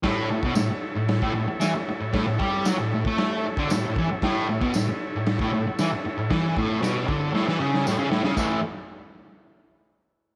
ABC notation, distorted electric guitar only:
X:1
M:4/4
L:1/16
Q:1/4=115
K:A
V:1 name="Distorted electric guitar" clef=bass
A,,2 A,, B,, A,, z2 A,,2 A,, A,, z E, z2 A,, | A,, A,, =G,2 F, A,, A,, A,3 z D, A,, A,, E, z | A,,2 A,, B,, A,, z2 A,,2 A,, A,, z E, z2 A,, | E,2 A,,2 B,,2 D,2 A,, E, C,2 A,, C, A,, C, |
[A,,E,A,]2 z12 z2 |]